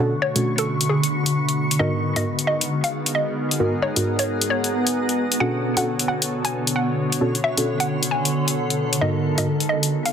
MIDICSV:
0, 0, Header, 1, 6, 480
1, 0, Start_track
1, 0, Tempo, 451128
1, 1911, Time_signature, 4, 2, 24, 8
1, 10775, End_track
2, 0, Start_track
2, 0, Title_t, "Synth pluck"
2, 0, Program_c, 0, 84
2, 233, Note_on_c, 0, 73, 92
2, 438, Note_off_c, 0, 73, 0
2, 623, Note_on_c, 0, 69, 92
2, 805, Note_off_c, 0, 69, 0
2, 952, Note_on_c, 0, 68, 87
2, 1838, Note_off_c, 0, 68, 0
2, 1909, Note_on_c, 0, 75, 91
2, 2115, Note_off_c, 0, 75, 0
2, 2302, Note_on_c, 0, 75, 89
2, 2484, Note_off_c, 0, 75, 0
2, 2631, Note_on_c, 0, 75, 88
2, 2836, Note_off_c, 0, 75, 0
2, 3020, Note_on_c, 0, 77, 89
2, 3203, Note_off_c, 0, 77, 0
2, 3350, Note_on_c, 0, 75, 88
2, 3556, Note_off_c, 0, 75, 0
2, 4070, Note_on_c, 0, 73, 93
2, 4276, Note_off_c, 0, 73, 0
2, 4460, Note_on_c, 0, 73, 87
2, 4644, Note_off_c, 0, 73, 0
2, 4791, Note_on_c, 0, 73, 89
2, 5678, Note_off_c, 0, 73, 0
2, 5750, Note_on_c, 0, 78, 94
2, 5956, Note_off_c, 0, 78, 0
2, 6138, Note_on_c, 0, 78, 90
2, 6323, Note_off_c, 0, 78, 0
2, 6471, Note_on_c, 0, 78, 85
2, 6676, Note_off_c, 0, 78, 0
2, 6859, Note_on_c, 0, 80, 89
2, 7043, Note_off_c, 0, 80, 0
2, 7189, Note_on_c, 0, 78, 90
2, 7395, Note_off_c, 0, 78, 0
2, 7914, Note_on_c, 0, 76, 94
2, 8118, Note_off_c, 0, 76, 0
2, 8299, Note_on_c, 0, 78, 89
2, 8483, Note_off_c, 0, 78, 0
2, 8631, Note_on_c, 0, 80, 92
2, 9518, Note_off_c, 0, 80, 0
2, 9591, Note_on_c, 0, 75, 93
2, 9796, Note_off_c, 0, 75, 0
2, 9981, Note_on_c, 0, 75, 90
2, 10164, Note_off_c, 0, 75, 0
2, 10312, Note_on_c, 0, 75, 87
2, 10517, Note_off_c, 0, 75, 0
2, 10699, Note_on_c, 0, 77, 90
2, 10775, Note_off_c, 0, 77, 0
2, 10775, End_track
3, 0, Start_track
3, 0, Title_t, "Ambient pad"
3, 0, Program_c, 1, 92
3, 0, Note_on_c, 1, 50, 79
3, 0, Note_on_c, 1, 83, 77
3, 0, Note_on_c, 1, 85, 81
3, 1910, Note_off_c, 1, 50, 0
3, 1910, Note_off_c, 1, 83, 0
3, 1910, Note_on_c, 1, 59, 80
3, 2041, Note_on_c, 1, 68, 91
3, 2516, Note_on_c, 1, 78, 72
3, 3027, Note_on_c, 1, 82, 76
3, 3468, Note_off_c, 1, 85, 0
3, 5749, Note_on_c, 1, 50, 88
3, 5752, Note_off_c, 1, 68, 0
3, 5752, Note_off_c, 1, 82, 0
3, 5927, Note_on_c, 1, 73, 91
3, 6853, Note_off_c, 1, 59, 0
3, 6907, Note_on_c, 1, 69, 85
3, 7310, Note_off_c, 1, 78, 0
3, 9590, Note_off_c, 1, 50, 0
3, 9591, Note_off_c, 1, 69, 0
3, 9593, Note_on_c, 1, 59, 84
3, 9927, Note_on_c, 1, 78, 81
3, 10114, Note_on_c, 1, 68, 94
3, 10207, Note_off_c, 1, 73, 0
3, 10775, Note_off_c, 1, 59, 0
3, 10775, Note_off_c, 1, 68, 0
3, 10775, Note_off_c, 1, 78, 0
3, 10775, End_track
4, 0, Start_track
4, 0, Title_t, "Analog synth pad"
4, 0, Program_c, 2, 89
4, 0, Note_on_c, 2, 47, 76
4, 0, Note_on_c, 2, 50, 71
4, 0, Note_on_c, 2, 57, 71
4, 0, Note_on_c, 2, 66, 71
4, 0, Note_on_c, 2, 85, 84
4, 1873, Note_off_c, 2, 47, 0
4, 1873, Note_off_c, 2, 50, 0
4, 1874, Note_off_c, 2, 57, 0
4, 1893, Note_off_c, 2, 85, 0
4, 1913, Note_on_c, 2, 59, 87
4, 1913, Note_on_c, 2, 63, 70
4, 1914, Note_on_c, 2, 56, 78
4, 1915, Note_on_c, 2, 70, 71
4, 5708, Note_off_c, 2, 66, 0
4, 5714, Note_off_c, 2, 56, 0
4, 5714, Note_off_c, 2, 59, 0
4, 5714, Note_off_c, 2, 63, 0
4, 5715, Note_off_c, 2, 70, 0
4, 5748, Note_on_c, 2, 50, 72
4, 5748, Note_on_c, 2, 66, 70
4, 5748, Note_on_c, 2, 73, 84
4, 5749, Note_on_c, 2, 69, 71
4, 5750, Note_on_c, 2, 47, 78
4, 7651, Note_off_c, 2, 69, 0
4, 7674, Note_on_c, 2, 59, 74
4, 9551, Note_off_c, 2, 50, 0
4, 9551, Note_off_c, 2, 66, 0
4, 9551, Note_off_c, 2, 73, 0
4, 9552, Note_off_c, 2, 47, 0
4, 9592, Note_on_c, 2, 56, 78
4, 9593, Note_on_c, 2, 63, 72
4, 9594, Note_on_c, 2, 66, 72
4, 9594, Note_on_c, 2, 70, 70
4, 10775, Note_off_c, 2, 56, 0
4, 10775, Note_off_c, 2, 59, 0
4, 10775, Note_off_c, 2, 63, 0
4, 10775, Note_off_c, 2, 66, 0
4, 10775, Note_off_c, 2, 70, 0
4, 10775, End_track
5, 0, Start_track
5, 0, Title_t, "Synth stab"
5, 0, Program_c, 3, 62
5, 0, Note_on_c, 3, 47, 90
5, 0, Note_on_c, 3, 61, 85
5, 0, Note_on_c, 3, 62, 83
5, 0, Note_on_c, 3, 66, 84
5, 0, Note_on_c, 3, 69, 100
5, 134, Note_off_c, 3, 69, 0
5, 135, Note_off_c, 3, 47, 0
5, 135, Note_off_c, 3, 61, 0
5, 135, Note_off_c, 3, 62, 0
5, 135, Note_off_c, 3, 66, 0
5, 378, Note_on_c, 3, 57, 90
5, 378, Note_on_c, 3, 61, 78
5, 379, Note_on_c, 3, 47, 84
5, 379, Note_on_c, 3, 62, 75
5, 379, Note_on_c, 3, 66, 79
5, 1888, Note_off_c, 3, 57, 0
5, 1889, Note_off_c, 3, 47, 0
5, 1889, Note_off_c, 3, 61, 0
5, 1889, Note_off_c, 3, 62, 0
5, 1889, Note_off_c, 3, 66, 0
5, 1911, Note_on_c, 3, 59, 65
5, 1911, Note_on_c, 3, 63, 67
5, 1911, Note_on_c, 3, 66, 68
5, 1911, Note_on_c, 3, 70, 82
5, 1912, Note_on_c, 3, 44, 74
5, 2264, Note_off_c, 3, 44, 0
5, 2264, Note_off_c, 3, 59, 0
5, 2264, Note_off_c, 3, 63, 0
5, 2264, Note_off_c, 3, 66, 0
5, 2264, Note_off_c, 3, 70, 0
5, 2299, Note_on_c, 3, 44, 80
5, 2299, Note_on_c, 3, 59, 72
5, 2299, Note_on_c, 3, 63, 70
5, 2299, Note_on_c, 3, 66, 72
5, 2299, Note_on_c, 3, 70, 86
5, 2388, Note_off_c, 3, 44, 0
5, 2388, Note_off_c, 3, 59, 0
5, 2388, Note_off_c, 3, 63, 0
5, 2388, Note_off_c, 3, 66, 0
5, 2388, Note_off_c, 3, 70, 0
5, 3829, Note_on_c, 3, 44, 89
5, 3829, Note_on_c, 3, 59, 82
5, 3829, Note_on_c, 3, 63, 82
5, 3829, Note_on_c, 3, 66, 83
5, 3829, Note_on_c, 3, 70, 99
5, 3974, Note_off_c, 3, 44, 0
5, 3974, Note_off_c, 3, 59, 0
5, 3974, Note_off_c, 3, 63, 0
5, 3974, Note_off_c, 3, 66, 0
5, 3974, Note_off_c, 3, 70, 0
5, 4217, Note_on_c, 3, 44, 83
5, 4217, Note_on_c, 3, 59, 76
5, 4217, Note_on_c, 3, 63, 75
5, 4217, Note_on_c, 3, 66, 77
5, 4217, Note_on_c, 3, 70, 95
5, 5728, Note_off_c, 3, 44, 0
5, 5728, Note_off_c, 3, 59, 0
5, 5728, Note_off_c, 3, 63, 0
5, 5728, Note_off_c, 3, 66, 0
5, 5728, Note_off_c, 3, 70, 0
5, 5749, Note_on_c, 3, 47, 73
5, 5749, Note_on_c, 3, 61, 67
5, 5749, Note_on_c, 3, 62, 66
5, 5749, Note_on_c, 3, 66, 65
5, 5749, Note_on_c, 3, 69, 80
5, 6103, Note_off_c, 3, 47, 0
5, 6103, Note_off_c, 3, 61, 0
5, 6103, Note_off_c, 3, 62, 0
5, 6103, Note_off_c, 3, 66, 0
5, 6103, Note_off_c, 3, 69, 0
5, 6139, Note_on_c, 3, 47, 77
5, 6139, Note_on_c, 3, 61, 72
5, 6139, Note_on_c, 3, 62, 73
5, 6139, Note_on_c, 3, 66, 74
5, 6139, Note_on_c, 3, 69, 87
5, 6228, Note_off_c, 3, 47, 0
5, 6228, Note_off_c, 3, 61, 0
5, 6228, Note_off_c, 3, 62, 0
5, 6228, Note_off_c, 3, 66, 0
5, 6228, Note_off_c, 3, 69, 0
5, 7671, Note_on_c, 3, 61, 82
5, 7671, Note_on_c, 3, 62, 86
5, 7671, Note_on_c, 3, 66, 85
5, 7671, Note_on_c, 3, 69, 103
5, 7672, Note_on_c, 3, 47, 94
5, 7815, Note_off_c, 3, 47, 0
5, 7815, Note_off_c, 3, 61, 0
5, 7815, Note_off_c, 3, 62, 0
5, 7815, Note_off_c, 3, 66, 0
5, 7815, Note_off_c, 3, 69, 0
5, 8060, Note_on_c, 3, 47, 85
5, 8060, Note_on_c, 3, 69, 93
5, 8061, Note_on_c, 3, 61, 76
5, 8061, Note_on_c, 3, 62, 75
5, 8061, Note_on_c, 3, 66, 76
5, 9570, Note_off_c, 3, 47, 0
5, 9570, Note_off_c, 3, 61, 0
5, 9570, Note_off_c, 3, 62, 0
5, 9570, Note_off_c, 3, 66, 0
5, 9570, Note_off_c, 3, 69, 0
5, 9590, Note_on_c, 3, 66, 67
5, 9591, Note_on_c, 3, 44, 73
5, 9591, Note_on_c, 3, 59, 66
5, 9591, Note_on_c, 3, 63, 68
5, 9591, Note_on_c, 3, 70, 82
5, 9944, Note_off_c, 3, 44, 0
5, 9944, Note_off_c, 3, 59, 0
5, 9944, Note_off_c, 3, 63, 0
5, 9944, Note_off_c, 3, 66, 0
5, 9944, Note_off_c, 3, 70, 0
5, 9980, Note_on_c, 3, 66, 71
5, 9981, Note_on_c, 3, 44, 78
5, 9981, Note_on_c, 3, 59, 71
5, 9981, Note_on_c, 3, 63, 72
5, 9981, Note_on_c, 3, 70, 87
5, 10069, Note_off_c, 3, 44, 0
5, 10069, Note_off_c, 3, 59, 0
5, 10069, Note_off_c, 3, 63, 0
5, 10069, Note_off_c, 3, 66, 0
5, 10069, Note_off_c, 3, 70, 0
5, 10775, End_track
6, 0, Start_track
6, 0, Title_t, "Drums"
6, 380, Note_on_c, 9, 42, 57
6, 487, Note_off_c, 9, 42, 0
6, 619, Note_on_c, 9, 42, 45
6, 726, Note_off_c, 9, 42, 0
6, 859, Note_on_c, 9, 42, 57
6, 965, Note_off_c, 9, 42, 0
6, 1101, Note_on_c, 9, 42, 46
6, 1207, Note_off_c, 9, 42, 0
6, 1341, Note_on_c, 9, 42, 58
6, 1448, Note_off_c, 9, 42, 0
6, 1581, Note_on_c, 9, 42, 31
6, 1687, Note_off_c, 9, 42, 0
6, 1821, Note_on_c, 9, 42, 56
6, 1927, Note_off_c, 9, 42, 0
6, 2300, Note_on_c, 9, 42, 59
6, 2407, Note_off_c, 9, 42, 0
6, 2540, Note_on_c, 9, 42, 47
6, 2646, Note_off_c, 9, 42, 0
6, 2780, Note_on_c, 9, 42, 61
6, 2887, Note_off_c, 9, 42, 0
6, 3020, Note_on_c, 9, 42, 47
6, 3126, Note_off_c, 9, 42, 0
6, 3259, Note_on_c, 9, 42, 60
6, 3365, Note_off_c, 9, 42, 0
6, 3738, Note_on_c, 9, 42, 60
6, 3845, Note_off_c, 9, 42, 0
6, 4217, Note_on_c, 9, 42, 64
6, 4324, Note_off_c, 9, 42, 0
6, 4458, Note_on_c, 9, 42, 50
6, 4564, Note_off_c, 9, 42, 0
6, 4697, Note_on_c, 9, 42, 66
6, 4804, Note_off_c, 9, 42, 0
6, 4938, Note_on_c, 9, 42, 47
6, 5044, Note_off_c, 9, 42, 0
6, 5177, Note_on_c, 9, 42, 63
6, 5284, Note_off_c, 9, 42, 0
6, 5416, Note_on_c, 9, 42, 35
6, 5522, Note_off_c, 9, 42, 0
6, 5656, Note_on_c, 9, 42, 61
6, 5763, Note_off_c, 9, 42, 0
6, 6137, Note_on_c, 9, 42, 61
6, 6244, Note_off_c, 9, 42, 0
6, 6378, Note_on_c, 9, 42, 50
6, 6484, Note_off_c, 9, 42, 0
6, 6617, Note_on_c, 9, 42, 64
6, 6724, Note_off_c, 9, 42, 0
6, 6859, Note_on_c, 9, 42, 48
6, 6965, Note_off_c, 9, 42, 0
6, 7100, Note_on_c, 9, 42, 64
6, 7206, Note_off_c, 9, 42, 0
6, 7580, Note_on_c, 9, 42, 64
6, 7686, Note_off_c, 9, 42, 0
6, 7820, Note_on_c, 9, 42, 35
6, 7926, Note_off_c, 9, 42, 0
6, 8060, Note_on_c, 9, 42, 60
6, 8166, Note_off_c, 9, 42, 0
6, 8300, Note_on_c, 9, 42, 51
6, 8406, Note_off_c, 9, 42, 0
6, 8540, Note_on_c, 9, 42, 63
6, 8646, Note_off_c, 9, 42, 0
6, 8781, Note_on_c, 9, 42, 49
6, 8887, Note_off_c, 9, 42, 0
6, 9020, Note_on_c, 9, 42, 62
6, 9126, Note_off_c, 9, 42, 0
6, 9261, Note_on_c, 9, 42, 34
6, 9367, Note_off_c, 9, 42, 0
6, 9499, Note_on_c, 9, 42, 61
6, 9605, Note_off_c, 9, 42, 0
6, 9978, Note_on_c, 9, 42, 61
6, 10085, Note_off_c, 9, 42, 0
6, 10219, Note_on_c, 9, 42, 47
6, 10325, Note_off_c, 9, 42, 0
6, 10459, Note_on_c, 9, 42, 60
6, 10565, Note_off_c, 9, 42, 0
6, 10699, Note_on_c, 9, 42, 47
6, 10775, Note_off_c, 9, 42, 0
6, 10775, End_track
0, 0, End_of_file